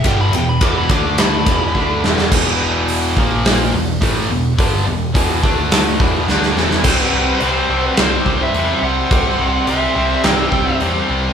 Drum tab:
CC |----------------|x---------------|----------------|x---x---x---x---|
RD |x-x-x-x-x-x-----|----------------|----------------|----------------|
HH |----------------|----o---o---o---|o---o---o-------|----------------|
SD |--------o-----oo|--------o-------|--------o---oooo|--------o-------|
BD |o---o-o---o-o---|o-----o-----o---|o---o-o---o-----|o---------o-----|

CC |x---x---x---x---|
RD |----------------|
HH |----------------|
SD |--------o-------|
BD |o---------o-----|